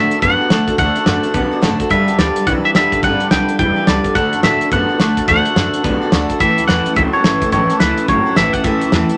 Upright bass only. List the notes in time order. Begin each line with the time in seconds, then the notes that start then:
Already playing: A2
0.11 muted upright bass stroke
0.22 F#2
0.40 muted upright bass stroke
0.50 B1
0.68 D2
0.78 D2
0.96 muted upright bass stroke
1.07 F#2
1.23 muted upright bass stroke
1.34 B1
1.52 muted upright bass stroke
1.62 F#1
1.80 muted upright bass stroke
1.90 G1
2.07 B1
2.18 D2
2.35 muted upright bass stroke
2.47 B1
2.64 muted upright bass stroke
2.75 E1
2.92 G1
3.03 G1
3.20 muted upright bass stroke
3.31 B1
3.48 muted upright bass stroke
3.59 E1
3.77 muted upright bass stroke
3.88 C#2
4.04 muted upright bass stroke
4.15 D2
4.33 F#2
4.43 A2
4.60 muted upright bass stroke
4.72 F#2
4.89 muted upright bass stroke
4.99 B1
5.17 D2
5.28 D2
5.45 muted upright bass stroke
5.56 F#2
5.73 muted upright bass stroke
5.84 B1
6.01 muted upright bass stroke
6.12 D2
6.30 muted upright bass stroke
6.40 A1
6.58 C#2
6.68 E2
6.85 muted upright bass stroke
6.96 C#2
7.14 muted upright bass stroke
7.25 G1
7.42 A1
7.52 A1
7.70 muted upright bass stroke
7.81 C#2
7.98 muted upright bass stroke
8.08 G1
8.26 muted upright bass stroke
8.37 A1
8.54 muted upright bass stroke
8.64 A1
8.82 C#2
8.92 E2
9.09 muted upright bass stroke